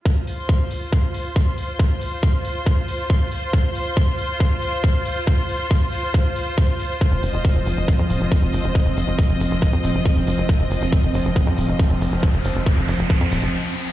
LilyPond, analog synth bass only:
\new Staff \with { instrumentName = "Analog synth bass" } { \clef bass \time 4/4 \key c \phrygian \tempo 4 = 138 r1 | r1 | r1 | r1 |
r16 f,,16 f,,16 f,,16 r16 f,,16 f,,16 f,,16 r16 f,16 ees,,16 f,,16 r16 f,,16 f,,16 f,,16 | r16 f,,16 f,,16 f,,16 r16 f,,16 f,,16 f,,16 r16 f,16 ees,,16 f,,16 r16 f,,16 f,,16 f,,16 | r16 f,,16 f,,16 f,,16 r16 f,,16 f,,16 f,,16 r16 f,16 ees,,16 f,,16 r16 f,,16 f,,16 f,,16 | r16 f,,16 f,,16 f,,16 r16 f,,16 f,,16 f,,16 r16 f,16 ees,,16 f,,16 r4 | }